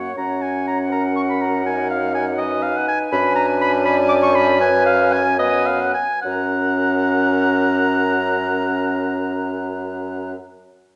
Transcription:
0.00 0.15 A#3 medium
0.00 0.16 C#5 medium
0.00 0.15 F#5 medium
0.16 2.96 F#2 medium
0.16 1.62 C#4 medium
0.16 0.92 C#5 medium
0.16 2.41 F#5 medium
0.16 0.44 A#5 loud
0.42 0.67 G#5 medium
0.67 0.79 A#5 medium
0.90 2.40 A#4 medium
0.90 1.03 A#5 loud
1.16 1.22 C#6 medium
1.29 1.43 B5 medium
1.42 1.65 A#5 loud
1.66 3.13 D#4 medium
1.66 1.89 G#5 medium
1.90 2.14 F5 loud
2.14 2.25 G#5 loud
2.38 3.11 B4 medium
2.38 2.64 D#5 loud
2.38 5.40 G#5 medium
2.62 2.78 F5 loud
2.77 2.88 F#5 loud
2.88 2.99 G#5 loud
3.11 5.92 F#2 loud
3.11 4.62 D4 medium
3.11 3.86 B4 loud
3.11 3.35 B5 loud
3.36 3.47 A#5 loud
3.61 3.72 B5 loud
3.85 4.60 D5 medium
3.85 3.96 B5 loud
4.09 4.15 D6 loud
4.23 4.37 C#6 loud
4.35 4.60 B5 loud
4.60 5.39 C#4 loud
4.60 5.21 B4 loud
4.60 4.85 G#5 loud
4.86 5.14 F5 loud
5.13 5.38 G#5 loud
5.38 5.95 B3 loud
5.38 5.94 B4 medium
5.38 5.68 D#5 loud
5.38 5.96 G#5 loud
5.66 5.82 F5 loud
5.81 5.93 F#5 loud
5.94 6.21 G#5 loud
6.21 10.34 F#2 loud
6.21 10.34 C#4 medium
6.21 10.34 A#4 medium
6.21 10.32 F#5 loud
6.26 10.35 A#5 medium

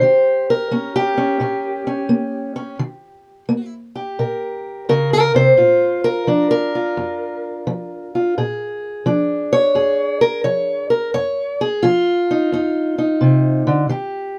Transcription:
0.00 0.67 D#3 medium
0.00 0.95 G4 soft
0.00 0.49 C5 medium
0.50 1.65 A#4 medium
0.71 1.36 A#3 medium
0.71 1.17 C#4 soft
0.96 3.73 G4 medium
1.18 1.40 C#4 soft
1.40 2.05 A#2 medium
1.40 1.86 C#4 soft
1.87 2.55 C#4 soft
2.09 2.75 A#3 medium
2.56 2.77 C#4 soft
2.79 3.45 D#3 medium
3.49 3.51 A#3 medium
3.96 5.55 G4 soft
4.19 4.84 A#2 medium
4.19 4.89 A#4 soft
4.89 5.34 C#3 medium
4.89 5.12 A#4 medium
5.13 5.35 A#4 medium
5.35 5.57 C3 medium
5.35 6.04 C5 medium
5.57 6.22 A#2 medium
5.57 6.75 F4 soft
6.04 6.50 A#4 medium
6.27 6.92 F3 medium
6.27 8.33 D4 soft
6.51 9.28 A#4 medium
6.75 8.15 F4 soft
6.97 7.62 F2 medium
7.67 8.31 F3 medium
8.15 8.38 F4 soft
8.38 9.01 A#2 medium
8.38 9.74 G#4 soft
9.06 9.70 F3 medium
9.06 11.10 D4 soft
9.53 10.21 C#5 loud
9.75 10.39 F2 medium
9.75 11.10 G#4 soft
10.21 10.44 A#4 medium
10.44 11.09 F3 medium
10.44 10.90 C#5 medium
10.90 11.13 A#4 medium
11.14 11.78 F2 medium
11.14 11.59 C#5 medium
11.61 11.83 G#4 medium
11.83 12.47 F3 medium
11.83 13.89 F4 medium
12.31 12.53 D#4 soft
12.52 13.16 F2 medium
12.52 12.97 D#4 soft
12.98 13.87 D#4 soft
13.21 13.66 C3 medium
13.67 13.89 D3 medium
13.89 14.39 D#3 medium
13.89 14.39 G4 soft

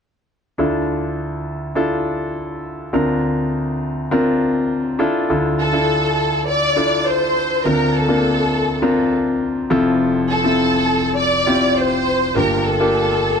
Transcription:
0.58 2.90 D2 soft
0.58 2.90 D3 soft
0.58 1.67 D4 medium
0.58 1.67 E4 soft
0.58 1.68 F4 soft
0.58 1.68 A4 medium
1.75 2.85 D4 medium
1.75 2.85 E4 medium
1.75 2.85 F4 medium
1.75 2.85 A4 medium
2.93 4.95 D2 medium
2.93 4.95 D3 medium
2.93 4.02 C4 medium
2.93 4.03 D4 medium
2.93 4.03 F4 soft
2.93 4.03 A#4 medium
4.11 5.00 C4 medium
4.11 4.97 D4 medium
4.11 4.98 F4 medium
4.11 5.00 A#4 medium
4.99 5.26 D4 medium
4.99 5.27 E4 medium
4.99 5.27 F4 medium
4.99 5.27 A4 medium
5.29 7.61 D2 medium
5.29 7.61 D3 medium
5.29 5.70 D4 medium
5.29 5.70 E4 medium
5.29 5.70 F4 medium
5.29 5.71 A4 medium
5.59 6.43 A4 medium
5.73 6.68 D4 soft
5.73 6.69 E4 soft
5.73 6.69 F4 medium
5.73 6.69 A4 medium
6.47 7.06 D5 medium
6.76 7.58 D4 medium
6.76 7.58 E4 medium
6.76 7.58 F4 soft
6.76 7.58 A4 medium
7.07 7.65 C5 medium
7.65 9.67 D2 soft
7.65 9.67 D3 soft
7.65 8.06 C4 medium
7.65 8.06 D4 medium
7.65 8.06 F4 soft
7.65 8.06 A#4 medium
7.65 7.94 A#4 medium
7.94 9.12 A4 medium
8.09 8.77 A#3 medium
8.09 8.77 C4 medium
8.09 8.77 D4 medium
8.09 8.77 F4 soft
8.82 9.69 C4 medium
8.82 9.70 D4 medium
8.82 9.69 F4 medium
8.82 9.71 A#4 medium
9.70 12.02 F1 medium
9.70 12.02 F2 medium
9.70 10.39 C4 medium
9.70 10.39 E4 medium
9.70 10.39 F4 medium
9.70 10.39 A4 medium
10.30 11.14 A4 medium
10.44 11.39 C4 medium
10.44 11.39 E4 medium
10.44 11.40 F4 soft
10.44 11.40 A4 medium
11.18 11.76 D5 medium
11.47 12.29 C4 medium
11.47 12.29 E4 medium
11.47 12.29 F4 medium
11.47 12.29 G4 medium
11.77 12.36 C5 medium
12.35 13.40 G1 soft
12.35 13.40 G2 soft
12.35 12.76 A#3 medium
12.35 12.76 D4 soft
12.35 12.76 F4 soft
12.35 12.76 G4 medium
12.35 12.66 A#4 medium
12.67 13.40 A4 medium
12.80 13.40 A#3 medium
12.80 13.40 D4 soft
12.80 13.40 F4 soft
12.80 13.40 G4 medium

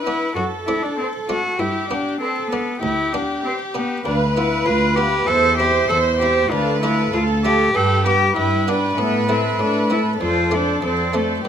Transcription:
0.00 0.34 E4 medium
0.00 0.21 B4 medium
0.00 0.36 B4 medium
0.07 0.28 B3 soft
0.07 0.29 D4 soft
0.35 0.85 F#2 medium
0.35 0.85 F#2 soft
0.35 0.43 F#4 medium
0.35 1.57 A4 medium
0.66 1.12 A3 soft
0.66 1.12 C4 soft
0.66 1.12 D4 soft
0.66 0.84 E4 medium
0.82 0.97 D4 medium
0.98 1.06 C4 medium
0.98 1.45 C5 soft
0.98 1.44 D5 medium
1.29 1.51 A3 soft
1.29 1.51 C4 soft
1.29 1.52 D4 soft
1.29 1.60 F#4 medium
1.59 2.08 G2 medium
1.59 2.08 G2 soft
1.59 1.89 E4 medium
1.59 2.20 G4 medium
1.89 2.35 B3 soft
1.89 2.20 D4 medium
1.89 2.35 D4 soft
2.20 2.50 C4 medium
2.20 2.82 A4 medium
2.20 2.67 B4 medium
2.20 2.67 D5 soft
2.51 2.82 B3 medium
2.51 2.75 B3 soft
2.51 2.75 D4 soft
2.82 3.32 D2 medium
2.82 3.31 D2 soft
2.82 3.14 E4 medium
2.82 4.03 G4 medium
3.13 3.58 B3 soft
3.13 3.43 D4 medium
3.13 3.58 D4 soft
3.44 3.52 C4 medium
3.44 3.90 B4 medium
3.44 3.90 D5 medium
3.74 4.04 B3 medium
3.74 3.97 B3 soft
3.74 3.97 D4 soft
4.05 4.57 D2 soft
4.05 4.60 D2 medium
4.05 4.13 D4 medium
4.05 4.35 B4 medium
4.05 5.26 B4 medium
4.05 4.35 F5 soft
4.35 4.81 B3 soft
4.35 4.66 E4 medium
4.35 4.81 F4 soft
4.35 4.65 B4 soft
4.35 4.66 F5 medium
4.65 5.18 D2 soft
4.65 5.21 D2 medium
4.65 4.98 F4 medium
4.65 4.95 B4 medium
4.65 4.96 F5 soft
4.96 5.20 B3 soft
4.96 5.20 F4 soft
4.96 5.28 G4 medium
4.96 5.27 B4 soft
4.96 5.28 F5 soft
5.26 5.82 E2 medium
5.26 5.80 E2 soft
5.26 5.57 A4 medium
5.26 5.57 C5 medium
5.26 6.51 C5 medium
5.26 5.59 E5 medium
5.58 6.04 C4 soft
5.58 6.04 E4 soft
5.58 5.88 G4 medium
5.58 5.88 C5 soft
5.58 5.89 E5 soft
5.89 6.44 E2 medium
5.89 6.42 E2 soft
5.89 5.97 A4 medium
5.89 6.19 C5 medium
5.89 6.21 E5 medium
6.19 6.43 C4 soft
6.19 6.52 G4 medium
6.19 6.51 C5 soft
6.19 6.52 E5 soft
6.23 6.44 E4 soft
6.50 7.06 D2 medium
6.50 7.03 D2 soft
6.50 6.81 D4 medium
6.50 6.81 A4 medium
6.50 7.11 B4 medium
6.50 6.81 F5 medium
6.82 7.27 A3 soft
6.82 7.28 D4 soft
6.82 7.12 E4 medium
6.82 7.28 F4 soft
6.82 7.11 A4 soft
6.82 7.12 F5 medium
7.12 7.67 D2 medium
7.12 7.65 D2 soft
7.12 7.22 F4 medium
7.12 7.43 A4 medium
7.12 7.75 A4 medium
7.12 7.42 F5 soft
7.44 7.67 A3 soft
7.44 7.67 D4 soft
7.44 7.67 F4 soft
7.44 7.77 G4 medium
7.44 7.74 A4 medium
7.44 7.74 F5 soft
7.74 8.29 G2 medium
7.74 8.26 G2 soft
7.74 8.34 G4 medium
7.74 8.06 A4 medium
7.74 8.05 B4 soft
7.74 8.04 G5 medium
8.05 8.50 B3 soft
8.05 8.50 D4 soft
8.05 8.36 G4 medium
8.05 8.50 G4 soft
8.05 8.36 B4 soft
8.05 8.35 G5 soft
8.35 8.90 G2 medium
8.35 8.88 G2 soft
8.35 8.70 E4 medium
8.35 10.17 B4 medium
8.35 8.67 B4 medium
8.35 8.64 G5 medium
8.65 8.90 B3 soft
8.65 9.00 D4 medium
8.65 8.90 D4 soft
8.65 8.90 G4 soft
8.65 8.98 B4 soft
8.65 8.96 G5 medium
8.97 9.52 A2 medium
8.97 9.49 A2 soft
8.97 9.31 B3 medium
8.97 9.28 A4 medium
8.97 9.27 E5 medium
9.28 9.73 A3 soft
9.28 9.73 C4 soft
9.28 9.62 C4 medium
9.28 9.73 E4 soft
9.28 9.59 A4 soft
9.28 9.57 E5 medium
9.58 10.13 A2 medium
9.58 10.11 A2 soft
9.58 9.91 D4 medium
9.58 9.89 A4 medium
9.58 9.88 E5 medium
9.90 10.12 A3 soft
9.90 10.13 C4 soft
9.90 10.13 E4 soft
9.90 9.99 E4 medium
9.90 10.21 A4 medium
9.90 10.20 E5 soft
10.20 10.73 F2 soft
10.20 10.76 F2 medium
10.20 10.55 F4 medium
10.20 11.43 A4 medium
10.20 10.51 C5 soft
10.20 10.51 D5 medium
10.51 10.96 A3 soft
10.51 10.97 C4 soft
10.51 10.97 D4 soft
10.51 10.82 D4 medium
10.51 10.82 C5 soft
10.51 10.81 D5 soft
10.82 11.35 F2 soft
10.82 11.38 F2 medium
10.82 11.17 C4 medium
10.82 11.14 C5 soft
10.82 11.13 D5 soft
11.14 11.36 A3 soft
11.14 11.46 A3 medium
11.14 11.37 C4 soft
11.14 11.37 D4 soft
11.14 11.45 C5 soft
11.14 11.45 D5 soft
11.45 11.48 G2 medium
11.45 11.48 G2 soft
11.45 11.48 G4 medium

